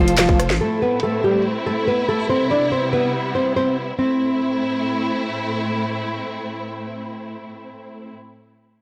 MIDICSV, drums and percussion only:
0, 0, Header, 1, 2, 480
1, 0, Start_track
1, 0, Key_signature, 0, "minor"
1, 0, Tempo, 422535
1, 688, Time_signature, 4, 2, 24, 8
1, 10016, End_track
2, 0, Start_track
2, 0, Title_t, "Drums"
2, 88, Note_on_c, 9, 42, 81
2, 201, Note_off_c, 9, 42, 0
2, 201, Note_on_c, 9, 39, 102
2, 208, Note_on_c, 9, 38, 127
2, 209, Note_on_c, 9, 42, 81
2, 315, Note_off_c, 9, 39, 0
2, 322, Note_off_c, 9, 38, 0
2, 323, Note_off_c, 9, 42, 0
2, 328, Note_on_c, 9, 36, 97
2, 441, Note_off_c, 9, 36, 0
2, 448, Note_on_c, 9, 37, 95
2, 450, Note_on_c, 9, 42, 89
2, 562, Note_off_c, 9, 37, 0
2, 564, Note_off_c, 9, 42, 0
2, 568, Note_on_c, 9, 38, 72
2, 681, Note_off_c, 9, 38, 0
2, 10016, End_track
0, 0, End_of_file